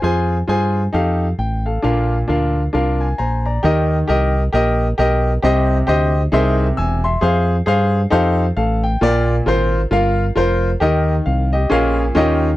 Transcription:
0.02 0.42 F2 medium
0.02 0.35 F4 medium
0.02 0.36 G#4 medium
0.02 0.36 C5 medium
0.02 0.36 G#5 medium
0.48 0.87 G2 medium
0.48 0.81 F4 medium
0.48 0.81 G#4 medium
0.48 0.81 C5 medium
0.48 0.81 G#5 medium
0.93 1.32 F2 medium
0.93 1.26 D#4 medium
0.93 1.26 G4 medium
0.93 1.26 A4 medium
0.93 1.27 F5 medium
1.38 1.77 A1 medium
1.38 1.64 G5 medium
1.66 2.09 A4 medium
1.66 1.83 F5 medium
1.82 2.22 A#1 medium
1.82 2.52 A#2 medium
1.82 2.16 D4 medium
1.82 2.16 F4 medium
1.82 2.16 A#4 medium
1.82 2.17 F5 medium
2.28 2.67 D2 medium
2.28 2.61 D4 medium
2.28 2.61 F4 medium
2.28 2.61 A#4 medium
2.28 2.62 F5 medium
2.73 3.12 C2 medium
2.73 3.06 D4 medium
2.73 3.06 F4 medium
2.73 3.06 A#4 medium
2.73 3.07 F5 medium
3.01 3.17 G#5 medium
3.18 3.58 A#1 medium
3.18 3.45 C5 soft
3.18 3.44 G#5 medium
3.18 3.44 A#5 medium
3.46 3.89 D5 soft
3.46 3.88 A#5 medium
3.63 4.02 D#2 loud
3.63 4.32 D#3 medium
3.63 3.96 G4 medium
3.63 3.96 A#4 medium
3.63 3.97 D#5 loud
4.08 4.47 C2 loud
4.08 4.41 G4 medium
4.08 4.41 A#4 medium
4.08 4.42 D#5 medium
4.53 4.92 A#1 loud
4.53 4.85 G4 medium
4.53 4.86 A#4 medium
4.53 4.86 D#5 loud
4.98 5.37 B1 loud
4.98 5.30 G4 medium
4.98 5.31 A#4 medium
4.98 5.31 D#5 loud
5.42 5.81 C2 loud
5.42 6.11 C3 medium
5.42 5.75 G4 medium
5.42 5.76 C5 medium
5.42 5.76 D#5 loud
5.87 6.26 D2 loud
5.87 6.20 G4 medium
5.87 6.20 C5 medium
5.87 6.21 D#5 loud
6.32 6.71 C2 loud
6.32 7.00 C3 medium
6.32 6.65 D#4 medium
6.32 6.65 G#4 medium
6.32 6.65 A#4 medium
6.32 6.65 C5 medium
6.32 6.66 E5 loud
6.77 7.16 E1 loud
6.77 7.03 G#5 medium
6.77 7.03 E6 medium
7.04 7.47 E5 medium
7.04 7.47 C6 medium
7.21 7.60 F2 loud
7.21 7.54 G#4 medium
7.21 7.55 C5 medium
7.21 7.55 F5 medium
7.66 8.05 G2 loud
7.66 7.99 G#4 medium
7.66 7.99 C5 medium
7.66 8.00 F5 loud
8.10 8.50 F2 loud
8.10 8.44 D#4 medium
8.10 8.44 G4 medium
8.10 8.44 A4 medium
8.10 8.44 C5 medium
8.10 8.45 F5 loud
8.57 8.95 A1 loud
8.57 8.83 A4 medium
8.57 8.82 F5 medium
8.84 9.26 G5 medium
9.01 9.40 A#1 loud
9.01 9.69 A#2 medium
9.01 9.34 F4 medium
9.01 9.34 A#4 medium
9.01 9.35 D5 loud
9.46 9.85 G#1 loud
9.46 9.79 F4 medium
9.46 9.79 A#4 medium
9.46 9.80 C5 loud
9.91 10.29 G1 loud
9.91 10.23 F4 medium
9.91 10.24 A#4 medium
9.91 10.24 F5 loud
10.36 10.75 F1 medium
10.36 10.68 F4 medium
10.36 10.69 A#4 medium
10.36 10.69 C5 loud
10.80 11.19 D#2 loud
10.80 11.49 D#3 medium
10.80 11.13 G4 medium
10.80 11.14 A#4 medium
10.80 11.14 D#5 loud
11.26 11.65 C2 loud
11.26 11.51 F5 medium
11.53 11.96 G4 medium
11.53 11.96 D#5 medium
11.70 12.10 A#1 loud
11.70 12.13 A#2 medium
11.70 12.03 C#4 medium
11.70 12.03 F4 medium
11.70 12.03 G#4 medium
11.70 12.04 A#4 medium
11.70 12.04 F5 loud
12.15 12.54 D#2 loud
12.15 12.57 D#3 medium
12.15 12.48 C#4 medium
12.15 12.48 F4 medium
12.15 12.48 G4 medium
12.15 12.48 A#4 medium
12.15 12.49 D#5 loud

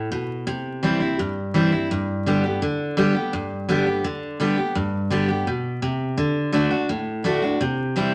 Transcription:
0.12 0.46 B2 medium
0.47 1.15 C3 medium
0.83 1.00 E3 medium
0.83 1.00 G3 medium
0.83 1.01 C4 loud
0.83 0.99 E4 medium
1.00 1.19 C4 soft
1.00 1.18 E4 medium
1.19 1.87 G2 medium
1.54 1.71 E3 medium
1.54 1.72 G3 medium
1.54 1.72 C4 medium
1.54 1.71 E4 loud
1.72 1.90 C4 soft
1.72 1.89 E4 medium
1.91 2.58 G2 medium
2.26 2.43 D3 medium
2.26 2.44 G3 medium
2.26 2.44 B3 medium
2.26 2.43 G4 medium
2.44 2.62 B3 medium
2.44 2.61 G4 medium
2.62 2.96 D3 medium
2.97 3.14 D3 loud
2.97 3.15 G3 medium
2.97 3.15 B3 medium
2.97 3.13 G4 loud
3.15 3.33 B3 soft
3.15 3.32 G4 medium
3.33 4.01 G2 loud
3.69 3.86 D3 medium
3.69 3.86 G3 medium
3.69 3.86 B3 loud
3.69 3.85 G4 loud
3.86 4.04 B3 soft
3.86 4.04 G4 medium
4.04 4.38 D3 medium
4.40 4.57 D3 medium
4.40 4.57 G3 loud
4.40 4.57 B3 medium
4.40 4.56 G4 loud
4.57 4.76 B3 medium
4.57 4.75 G4 medium
4.75 5.43 G2 medium
5.10 5.28 D3 medium
5.10 5.28 G3 loud
5.10 5.29 B3 loud
5.10 5.27 G4 medium
5.28 5.47 B3 soft
5.28 5.46 G4 medium
5.47 5.81 B2 medium
5.82 6.16 C3 medium
6.18 6.51 D3 medium
6.53 6.70 D3 loud
6.53 6.70 A3 medium
6.53 6.71 D4 medium
6.53 6.69 F#4 medium
6.71 6.89 D4 soft
6.71 6.88 F#4 medium
6.89 7.57 A2 medium
7.24 7.42 D3 medium
7.24 7.42 A3 medium
7.24 7.42 D4 loud
7.24 7.41 F#4 medium
7.42 7.60 D4 medium
7.42 7.59 F#4 medium
7.61 8.14 C3 loud
7.96 8.13 E3 medium
7.96 8.13 G3 loud
7.96 8.13 C4 medium
7.96 8.12 E4 loud

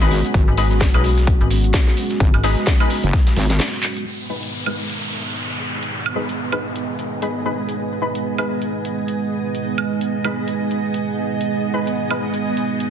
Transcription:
0.00 0.22 G#1 medium
0.00 4.02 G#3 medium
0.00 0.16 G#3 medium
0.00 4.02 B3 medium
0.00 4.02 C#4 medium
0.00 0.16 D#4 medium
0.00 4.05 F#4 loud
0.00 0.16 B4 loud
0.00 shaker soft
0.11 closed hi-hat medium
0.11 open hi-hat medium
0.25 closed hi-hat medium
0.25 shaker medium
0.34 0.46 G#1 loud
0.34 kick loud
0.34 closed hi-hat medium
0.34 shaker medium
0.48 0.92 G#1 loud
0.48 shaker soft
0.57 0.75 G#3 medium
0.57 0.75 D#4 medium
0.57 0.75 B4 medium
0.57 closed hi-hat medium
0.57 open hi-hat loud
0.71 snare soft
0.71 closed hi-hat medium
0.71 shaker medium
0.80 kick loud
0.80 snare loud
0.80 closed hi-hat medium
0.80 shaker medium
0.94 1.39 B1 loud
0.94 1.03 G#3 medium
0.94 1.03 D#4 medium
0.94 1.03 B4 medium
0.94 snare soft
0.94 closed hi-hat medium
0.94 high woodblock medium
0.94 shaker soft
1.04 closed hi-hat medium
1.04 open hi-hat medium
1.18 snare medium
1.18 closed hi-hat medium
1.18 shaker medium
1.27 kick loud
1.27 closed hi-hat medium
1.27 shaker medium
1.41 1.72 G#1 loud
1.41 closed hi-hat medium
1.41 shaker soft
1.50 closed hi-hat medium
1.50 open hi-hat loud
1.64 closed hi-hat medium
1.64 shaker medium
1.74 kick loud
1.74 snare loud
1.74 closed hi-hat medium
1.74 shaker medium
1.87 snare soft
1.87 shaker soft
1.97 closed hi-hat medium
1.97 open hi-hat medium
2.10 snare soft
2.10 closed hi-hat medium
2.10 shaker medium
2.20 2.32 G#1 loud
2.20 kick loud
2.20 closed hi-hat medium
2.20 shaker medium
2.34 2.55 G#1 loud
2.34 closed hi-hat soft
2.34 high woodblock medium
2.34 shaker soft
2.43 2.55 G#3 loud
2.43 2.55 D#4 loud
2.43 2.55 B4 loud
2.43 snare loud
2.43 closed hi-hat medium
2.43 open hi-hat loud
2.57 snare medium
2.57 closed hi-hat medium
2.57 shaker medium
2.67 kick loud
2.67 snare loud
2.67 closed hi-hat medium
2.67 shaker medium
2.80 2.89 G#3 medium
2.80 2.89 D#4 medium
2.80 2.89 B4 loud
2.80 closed hi-hat medium
2.80 closed hi-hat soft
2.80 high woodblock medium
2.80 shaker soft
2.90 closed hi-hat medium
2.90 open hi-hat medium
3.04 3.12 F#1 loud
3.04 closed hi-hat medium
3.04 shaker medium
3.13 kick loud
3.13 snare loud
3.13 closed hi-hat medium
3.13 shaker medium
3.27 snare loud
3.27 closed hi-hat medium
3.27 shaker soft
3.36 3.60 G#1 medium
3.36 snare loud
3.36 closed hi-hat medium
3.36 open hi-hat loud
3.50 snare soft
3.50 snare loud
3.50 closed hi-hat medium
3.50 shaker medium
3.60 snare loud
3.60 open hi-hat medium
3.60 shaker medium
3.73 closed hi-hat soft
3.73 shaker soft
3.83 clap medium
3.83 closed hi-hat medium
3.83 open hi-hat medium
3.96 closed hi-hat medium
3.96 shaker medium
4.06 12.90 G#3 medium
4.06 12.90 B3 medium
4.06 12.90 D#4 medium
4.06 11.49 B4 medium
4.06 downlifter medium
4.29 4.47 G#3 medium
4.29 4.47 D#4 medium
4.29 4.47 B4 medium
4.43 12.90 G#4 medium
4.43 closed hi-hat medium
4.66 4.75 G#3 medium
4.66 4.75 D#4 medium
4.66 4.75 B4 medium
4.66 closed hi-hat soft
4.66 high woodblock medium
4.72 12.90 D#5 medium
4.90 closed hi-hat medium
5.13 closed hi-hat soft
5.36 closed hi-hat medium
5.42 12.90 G#5 medium
5.83 closed hi-hat medium
6.06 high woodblock medium
6.16 6.27 G#3 medium
6.16 6.27 D#4 medium
6.16 6.27 B4 loud
6.29 closed hi-hat medium
6.52 6.61 G#3 medium
6.52 6.61 D#4 medium
6.52 6.61 B4 loud
6.52 closed hi-hat soft
6.52 high woodblock medium
6.76 closed hi-hat medium
6.99 closed hi-hat medium
7.22 7.37 G#3 medium
7.22 7.37 D#4 medium
7.22 7.37 B4 medium
7.22 closed hi-hat medium
7.45 7.60 G#3 medium
7.45 7.60 D#4 medium
7.45 7.60 B4 medium
7.69 closed hi-hat medium
8.02 8.19 G#3 medium
8.02 8.19 D#4 medium
8.02 8.19 B4 medium
8.15 closed hi-hat medium
8.38 8.47 G#3 medium
8.38 8.47 D#4 medium
8.38 8.47 B4 medium
8.38 closed hi-hat soft
8.38 high woodblock medium
8.62 closed hi-hat medium
8.85 closed hi-hat soft
9.08 closed hi-hat medium
9.55 closed hi-hat medium
9.78 closed hi-hat soft
9.78 high woodblock medium
10.01 closed hi-hat medium
10.24 10.33 G#3 medium
10.24 10.33 D#4 medium
10.24 10.33 B4 loud
10.24 closed hi-hat soft
10.24 high woodblock medium
10.48 closed hi-hat medium
10.71 closed hi-hat soft
10.94 closed hi-hat medium
11.41 closed hi-hat medium
11.50 12.90 D#5 medium
11.74 11.91 G#3 medium
11.74 11.91 D#4 medium
11.74 11.91 B4 medium
11.87 closed hi-hat medium
12.10 12.19 G#3 medium
12.10 12.19 D#4 medium
12.10 12.19 B4 medium
12.10 closed hi-hat soft
12.10 high woodblock medium
12.34 closed hi-hat medium
12.57 closed hi-hat soft
12.80 closed hi-hat medium

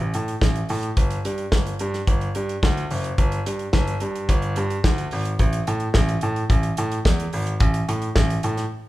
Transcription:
0.00 0.10 A1 medium
0.00 closed hi-hat soft
0.14 0.33 A2 medium
0.14 closed hi-hat medium
0.28 closed hi-hat soft
0.41 0.60 A1 medium
0.41 kick medium
0.41 snare loud
0.55 closed hi-hat soft
0.69 0.89 A2 medium
0.69 open hi-hat medium
0.83 closed hi-hat soft
0.97 1.16 G1 medium
0.97 kick loud
0.97 closed hi-hat medium
1.10 closed hi-hat medium
1.25 1.44 G2 medium
1.25 closed hi-hat medium
1.38 closed hi-hat soft
1.52 1.71 G1 medium
1.52 kick medium
1.52 snare loud
1.67 closed hi-hat soft
1.79 1.99 G2 medium
1.79 closed hi-hat medium
1.94 snare soft
1.94 closed hi-hat soft
2.07 2.26 G1 medium
2.07 kick loud
2.07 closed hi-hat medium
2.21 closed hi-hat soft
2.35 2.54 G2 medium
2.35 closed hi-hat medium
2.49 closed hi-hat soft
2.63 2.82 D2 medium
2.63 kick loud
2.63 snare medium
2.77 closed hi-hat soft
2.91 3.10 F#1 medium
2.91 open hi-hat medium
3.04 closed hi-hat soft
3.18 3.37 G1 loud
3.18 kick loud
3.18 closed hi-hat medium
3.32 closed hi-hat medium
3.46 3.65 G2 medium
3.46 closed hi-hat medium
3.59 closed hi-hat soft
3.73 3.93 G1 loud
3.73 kick loud
3.73 snare loud
3.87 closed hi-hat soft
4.00 4.29 G2 medium
4.00 closed hi-hat medium
4.15 closed hi-hat soft
4.29 4.57 G1 loud
4.29 kick loud
4.29 closed hi-hat medium
4.42 closed hi-hat soft
4.56 4.76 G2 loud
4.56 closed hi-hat medium
4.70 closed hi-hat soft
4.84 5.03 D2 medium
4.84 kick loud
4.84 snare loud
4.98 closed hi-hat soft
5.11 5.31 G#1 medium
5.11 open hi-hat medium
5.25 closed hi-hat medium
5.39 5.59 A1 loud
5.39 kick loud
5.39 closed hi-hat medium
5.53 closed hi-hat medium
5.67 5.86 A2 medium
5.67 closed hi-hat medium
5.80 closed hi-hat soft
5.94 6.14 A1 loud
5.94 kick loud
5.94 snare loud
6.08 closed hi-hat soft
6.21 6.42 A2 medium
6.21 closed hi-hat medium
6.36 closed hi-hat soft
6.50 6.69 A1 medium
6.50 kick loud
6.50 closed hi-hat medium
6.63 closed hi-hat soft
6.77 6.97 A2 loud
6.77 closed hi-hat medium
6.92 closed hi-hat medium
7.05 7.24 E2 medium
7.05 kick loud
7.05 snare loud
7.20 closed hi-hat soft
7.33 7.52 G#1 medium
7.33 open hi-hat medium
7.47 closed hi-hat medium
7.60 7.80 A1 medium
7.60 kick loud
7.60 closed hi-hat medium
7.74 closed hi-hat medium
7.88 8.07 A2 medium
7.88 closed hi-hat medium
8.02 closed hi-hat soft
8.16 8.35 A1 loud
8.16 kick loud
8.16 snare loud
8.30 closed hi-hat soft
8.43 8.63 A2 medium
8.43 closed hi-hat medium
8.57 snare soft
8.57 closed hi-hat soft

